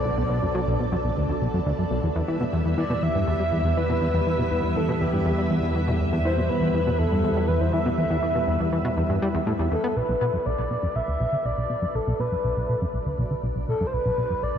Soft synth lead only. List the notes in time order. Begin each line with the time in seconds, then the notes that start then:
Already playing: D5
2.78 D5
3.03 E5
3.77 B4
4.76 A4
5.01 G4
6.24 C5
6.49 B4
6.98 A4
7.48 B4
7.61 C5
7.73 E5
9.72 A4
9.96 B4
10.46 D5
10.96 E5
11.46 D5
11.95 A4
12.20 B4
13.69 A4
13.87 C5
13.94 B4
14.43 D5